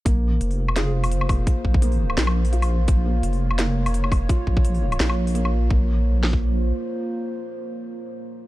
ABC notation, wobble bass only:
X:1
M:4/4
L:1/8
Q:"Swing 16ths" 1/4=170
K:Bbm
V:1 name="Wobble bass" clef=bass
B,,,2 F,,,6 | z B,,,3 B,,,4 | B,,,2 F,,,6 | z B,,,3 B,,,4 |
B,,,6 z2 | z8 |]